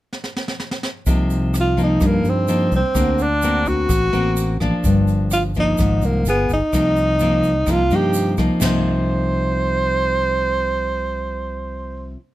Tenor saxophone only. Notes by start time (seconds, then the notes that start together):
1.60 F4
1.84 D#4
2.06 A#3
2.29 C4
2.76 C4
3.22 D4
3.68 F#4
5.33 F4
5.59 D#4
6.06 A#3
6.29 B3
6.53 D#4
7.71 F4
7.95 G4
8.64 C5